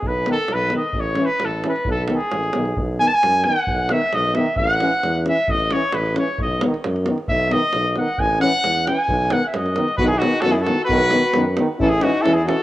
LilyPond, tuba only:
\new Staff \with { instrumentName = "Tuba" } { \clef bass \time 2/4 \key b \mixolydian \tempo 4 = 133 b,,4 b,,4 | a,,4 a,,4 | b,,4 a,,8 b,,8 | b,,4 fis,4 |
b,,4 b,,4 | a,,4 e,4 | a,,4 a,,4 | b,,4 fis,4 |
b,,4 b,,4 | a,,4 e,4 | b,,4 fis,4 | b,,4 fis,4 |
b,,4 fis,4 | a,,4 e,4 | }